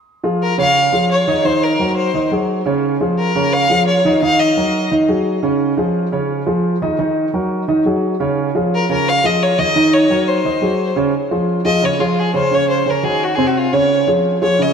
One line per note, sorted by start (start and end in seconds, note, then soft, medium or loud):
0.24 0.52 F3 medium
0.24 0.52 F4 medium
0.24 0.52 G#4 medium
0.43 0.58 A#4 medium
0.58 0.86 C#3 medium
0.58 0.87 C#4 medium
0.58 0.87 C#5 medium
0.58 1.07 F5 loud
0.93 1.21 F3 medium
0.93 1.21 F4 medium
0.93 1.21 G#4 medium
1.12 1.47 C#5 medium
1.27 1.42 D#3 medium
1.27 1.42 D#4 medium
1.27 1.42 D#5 medium
1.45 1.73 D#3 medium
1.45 1.73 D#4 medium
1.45 1.64 C5 loud
1.45 1.74 D#5 medium
1.63 1.96 A#4 medium
1.79 2.08 F#3 medium
1.79 2.08 F#4 medium
1.79 2.08 A#4 medium
1.97 2.29 C5 medium
2.14 2.28 D#3 medium
2.14 2.28 D#4 medium
2.14 2.29 D#5 medium
2.31 2.60 F#3 medium
2.31 2.60 F#4 medium
2.31 2.60 G#4 medium
2.66 2.94 C#3 medium
2.66 2.95 C#4 medium
2.66 2.95 C#5 medium
3.01 3.29 F3 medium
3.01 3.29 F4 medium
3.01 3.29 G#4 medium
3.18 3.54 A#4 medium
3.35 3.64 C#3 medium
3.35 3.64 C#4 medium
3.35 3.64 C#5 medium
3.53 3.87 F5 loud
3.70 3.98 F3 medium
3.70 3.99 F4 medium
3.70 3.99 G#4 medium
3.87 4.20 C#5 medium
4.05 4.19 D#3 medium
4.05 4.19 D#4 medium
4.05 4.19 D#5 medium
4.22 4.51 D#3 medium
4.22 4.51 D#4 medium
4.22 4.51 D#5 medium
4.22 4.41 F5 loud
4.40 4.91 D#5 medium
4.57 4.85 F#3 medium
4.57 4.85 F#4 medium
4.57 4.86 A#4 medium
4.91 5.06 D#3 medium
4.91 5.06 D#4 medium
4.91 5.06 D#5 medium
5.08 5.37 F#3 medium
5.08 5.37 F#4 medium
5.08 5.37 G#4 medium
5.43 5.71 C#3 medium
5.43 5.71 C#4 medium
5.43 5.72 C#5 medium
5.77 6.06 F3 medium
5.77 6.06 F4 medium
5.77 6.06 G#4 medium
6.12 6.41 C#3 medium
6.12 6.41 C#4 medium
6.12 6.41 C#5 medium
6.47 6.75 F3 medium
6.47 6.75 F4 medium
6.47 6.75 G#4 medium
6.82 6.96 D#3 medium
6.82 6.96 D#4 medium
6.82 6.96 D#5 medium
6.99 7.27 D#3 medium
6.99 7.27 D#4 medium
6.99 7.27 D#5 medium
7.33 7.62 F#3 medium
7.33 7.62 F#4 medium
7.33 7.62 A#4 medium
7.68 7.82 D#3 medium
7.68 7.82 D#4 medium
7.68 7.83 D#5 medium
7.85 8.14 F#3 medium
7.85 8.14 F#4 medium
7.85 8.14 G#4 medium
8.20 8.48 C#3 medium
8.20 8.48 C#4 medium
8.20 8.49 C#5 medium
8.55 8.83 F3 medium
8.55 8.83 F4 medium
8.55 8.83 G#4 medium
8.75 8.89 A#4 medium
8.89 9.18 C#3 medium
8.89 9.18 C#4 medium
8.89 9.10 A#4 loud
8.89 9.18 C#5 medium
9.09 9.27 F5 loud
9.24 9.52 F3 medium
9.24 9.52 F4 medium
9.24 9.52 G#4 medium
9.24 9.44 D#5 loud
9.43 9.60 C#5 loud
9.58 9.72 D#3 medium
9.58 9.73 D#4 medium
9.58 9.95 D#5 loud
9.58 9.73 D#5 medium
9.76 10.04 D#3 medium
9.76 10.04 D#4 medium
9.76 10.04 D#5 medium
9.94 10.30 C#5 loud
10.10 10.38 F#3 medium
10.10 10.38 F#4 medium
10.10 10.39 A#4 medium
10.28 10.97 C5 medium
10.45 10.59 D#3 medium
10.45 10.59 D#4 medium
10.45 10.59 D#5 medium
10.62 10.90 F#3 medium
10.62 10.90 F#4 medium
10.62 10.90 G#4 medium
10.96 11.10 C#3 medium
10.96 11.11 C#4 medium
10.96 11.11 C#5 medium
11.31 11.59 F3 medium
11.31 11.59 F4 medium
11.31 11.59 G#4 medium
11.65 11.79 F3 medium
11.65 11.79 F4 medium
11.65 11.80 G#4 medium
11.65 11.86 D#5 loud
11.82 11.96 C#3 medium
11.82 11.97 C#4 medium
11.82 11.97 C#5 medium
11.82 12.02 C#5 medium
11.99 12.28 F3 medium
11.99 12.28 F4 medium
11.99 12.21 F4 medium
11.99 12.28 G#4 medium
12.19 12.34 G#4 medium
12.34 12.48 C#3 medium
12.34 12.48 C#4 medium
12.34 12.56 C5 medium
12.34 12.49 C#5 medium
12.51 12.80 C#3 medium
12.51 12.80 C#4 medium
12.51 12.80 C#5 medium
12.51 12.69 C#5 loud
12.70 12.91 C5 medium
12.86 13.00 C#3 medium
12.86 13.00 C#4 medium
12.86 13.06 A#4 medium
12.86 13.01 C#5 medium
13.03 13.32 D#3 medium
13.03 13.32 D#4 medium
13.03 13.32 F#4 medium
13.03 13.25 G#4 medium
13.23 13.36 F#4 medium
13.35 13.66 C3 medium
13.35 13.66 C4 medium
13.35 13.48 G#4 medium
13.35 13.66 C5 medium
13.47 13.59 F#4 medium
13.57 13.75 F4 medium
13.73 14.01 C#3 medium
13.73 14.01 C#4 medium
13.73 14.07 C#5 medium
13.73 14.01 C#5 medium
14.07 14.35 F3 medium
14.07 14.36 F4 medium
14.07 14.36 G#4 medium
14.42 14.56 F3 medium
14.42 14.56 F4 medium
14.42 14.56 G#4 medium
14.42 14.64 C#5 medium
14.59 14.73 C#3 medium
14.59 14.73 C#4 medium
14.59 14.73 C#5 medium
14.59 14.73 D#5 medium